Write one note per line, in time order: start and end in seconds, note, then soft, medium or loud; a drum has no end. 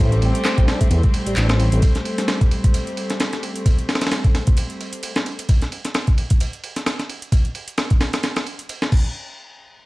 0.00 0.19 A1 medium
0.00 5.45 G3 medium
0.00 0.11 A3 medium
0.00 5.45 A3 medium
0.00 5.45 C4 medium
0.12 closed hi-hat soft
0.22 0.33 A1 loud
0.22 0.67 C4 medium
0.22 ride medium
0.35 closed hi-hat medium
0.45 snare loud
0.45 clap loud
0.45 closed hi-hat soft
0.45 ride medium
0.58 0.66 A1 medium
0.58 kick medium
0.58 closed hi-hat soft
0.68 0.79 D4 medium
0.68 snare loud
0.68 ride medium
0.81 0.89 A3 medium
0.81 kick medium
0.81 closed hi-hat medium
0.90 1.01 E2 medium
0.90 closed hi-hat medium
0.90 ride medium
1.03 kick medium
1.03 closed hi-hat soft
1.14 ride medium
1.26 1.34 A1 soft
1.26 1.35 G3 medium
1.26 closed hi-hat medium
1.36 1.69 A1 medium
1.36 1.47 D4 medium
1.36 clap loud
1.36 closed hi-hat medium
1.36 ride medium
1.49 snare loud
1.49 closed hi-hat soft
1.60 1.66 C4 medium
1.60 ride medium
1.72 1.80 A1 loud
1.72 1.81 C4 medium
1.72 closed hi-hat medium
1.82 kick loud
1.82 closed hi-hat soft
1.82 ride medium
1.95 snare soft
1.95 closed hi-hat soft
2.05 ride medium
2.18 snare soft
2.18 closed hi-hat medium
2.28 snare loud
2.28 closed hi-hat soft
2.28 ride medium
2.41 kick medium
2.41 closed hi-hat soft
2.51 ride medium
2.64 kick medium
2.64 closed hi-hat medium
2.74 closed hi-hat soft
2.74 ride medium
2.87 closed hi-hat soft
2.97 ride medium
3.10 snare soft
3.10 closed hi-hat medium
3.20 snare loud
3.20 closed hi-hat soft
3.20 ride medium
3.33 snare soft
3.33 closed hi-hat soft
3.43 ride medium
3.56 closed hi-hat medium
3.66 kick loud
3.66 closed hi-hat soft
3.66 ride medium
3.79 closed hi-hat soft
3.89 snare medium
3.89 ride medium
3.95 snare medium
3.95 ride medium
4.01 snare medium
4.01 closed hi-hat medium
4.01 ride medium
4.07 snare medium
4.07 ride medium
4.11 snare loud
4.11 closed hi-hat soft
4.11 ride medium
4.24 kick medium
4.24 closed hi-hat soft
4.35 snare soft
4.35 ride medium
4.47 kick medium
4.47 closed hi-hat medium
4.57 closed hi-hat soft
4.57 ride medium
4.70 closed hi-hat soft
4.81 ride medium
4.93 closed hi-hat medium
5.03 closed hi-hat soft
5.03 ride medium
5.16 snare loud
5.16 closed hi-hat soft
5.26 ride medium
5.39 closed hi-hat medium
5.39 ride soft
5.49 kick loud
5.49 closed hi-hat soft
5.49 ride medium
5.62 snare soft
5.62 closed hi-hat soft
5.72 ride medium
5.85 snare soft
5.85 closed hi-hat medium
5.94 snare loud
5.94 closed hi-hat soft
5.94 ride medium
6.07 kick medium
6.07 closed hi-hat soft
6.18 ride medium
6.30 kick medium
6.30 closed hi-hat medium
6.40 closed hi-hat soft
6.40 ride medium
6.53 closed hi-hat soft
6.64 ride medium
6.76 snare soft
6.76 closed hi-hat medium
6.86 snare loud
6.86 closed hi-hat medium
6.86 ride medium
6.99 snare soft
6.99 closed hi-hat soft
7.09 ride medium
7.22 closed hi-hat medium
7.32 kick loud
7.32 closed hi-hat medium
7.32 ride medium
7.45 closed hi-hat soft
7.55 ride medium
7.68 closed hi-hat medium
7.78 snare loud
7.78 closed hi-hat soft
7.78 ride medium
7.90 kick medium
7.90 closed hi-hat soft
8.01 snare loud
8.01 ride medium
8.13 snare loud
8.13 closed hi-hat medium
8.13 ride medium
8.23 snare loud
8.23 closed hi-hat medium
8.23 ride medium
8.36 snare loud
8.36 closed hi-hat soft
8.36 ride medium
8.46 ride medium
8.59 closed hi-hat medium
8.69 closed hi-hat medium
8.69 ride medium
8.82 snare loud
8.82 closed hi-hat soft
8.92 kick loud
8.92 crash medium